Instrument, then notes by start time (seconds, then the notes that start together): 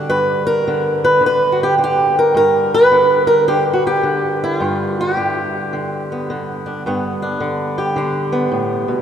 steel-string acoustic guitar
Already playing: D3 G3
0.09 G2 B4
0.47 A#4
0.68 D3
1.04 B4
1.21 D3
1.26 B4
1.52 F#4
1.63 G4
1.78 D3
1.84 G4
2.19 A#4
2.34 G2 A#4
2.74 B4
2.91 D3
3.27 A#4
3.48 D3 G4
3.73 F#4
3.87 G4
4.03 D3
4.44 E4
4.57 G2 F4
5.01 G4
5.17 D3
5.24 E4
5.73 D3
6.12 B3
6.30 D3
6.66 D4
6.86 G2 B3
7.22 D4
7.40 D3
7.78 G4
7.96 D3 D4
8.32 B3
8.52 A2
8.88 B2